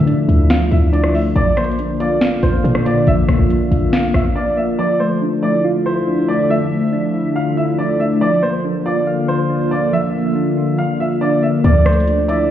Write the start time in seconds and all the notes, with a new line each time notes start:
Already playing: D3 F3 A3 D4 E4 F4 E5
0.07 D4, closed hi-hat
0.28 D2 E4, closed hi-hat
0.50 F4 F5, snare, closed hi-hat
0.71 D2 E4 E5, closed hi-hat
0.93 D4 D5, closed hi-hat
1.04 cross-stick
1.14 A3 E5, open hi-hat
1.36 A#1 D3 F3 A#3 F4 D5, closed hi-hat
1.57 A#3 C5, cross-stick, closed hi-hat
1.64 closed hi-hat
1.71 closed hi-hat
1.79 D4, closed hi-hat
2.00 F4 D5, closed hi-hat
2.21 F5, snare, closed hi-hat
2.43 A#1 F4 C5, closed hi-hat
2.64 A#2 D4, closed hi-hat
2.75 cross-stick
2.85 A#3 D5, closed hi-hat
3.07 A#1 F3 E5, closed hi-hat
3.29 A#1 A#3, cross-stick, closed hi-hat
3.39 A#1
3.49 D4, closed hi-hat
3.71 A#1 F4, closed hi-hat
3.92 F5, snare, closed hi-hat
4.14 A#1 F4 E5, cross-stick, closed hi-hat
4.36 D4 D5
4.57 A#3 E5
4.79 D3 F3 D5 E5
5.00 A3 C5
5.22 D4
5.43 E4 D5
5.64 F4
5.86 E4 C5
6.07 D4
6.28 A3 D5
6.50 F3 E5
6.71 A3
6.93 D4
7.14 E4
7.35 F4 F5
7.57 E4 E5
7.79 D4 D5
8.00 A3 E5
8.21 F3 A#3 F4 D5
8.42 A#3 C5
8.65 D4
8.86 F4 D5
9.07 F5
9.28 F4 C5
9.50 D4
9.71 A#3 D5
9.93 F3 E5
10.15 A#3
10.35 D4
10.57 F4
10.78 F5
11.00 F4 E5
11.21 D4 D5
11.43 A#3 E5
11.64 D2 F3 D5 E5, closed hi-hat
11.86 A3 C5, cross-stick, closed hi-hat
11.93 closed hi-hat
12.00 closed hi-hat
12.07 D4, closed hi-hat
12.28 E4 D5 E5, closed hi-hat